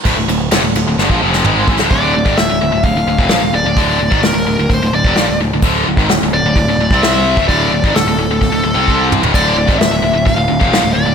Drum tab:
CC |----------------|----------------|----------------|x---------------|
RD |x-x-x-x---------|----------------|----------------|----------------|
HH |----------------|o---o---o---o---|o---o---o---o---|----o---o---o---|
SD |----o---o--o---o|----o-------o---|----o-------o---|----o-------o---|
T2 |------------o---|----------------|----------------|----------------|
FT |----------------|----------------|----------------|----------------|
BD |o--------o----o-|o--o----o--o----|o--o----o--o----|o--o----o--o---o|

CC |----------------|x---------------|
RD |----------------|----------------|
HH |o---o---o-------|o---o---o---o---|
SD |----o-----------|----o-------o---|
T2 |--------------o-|----------------|
FT |---------------o|----------------|
BD |o--o----o---o---|o--o----o--o----|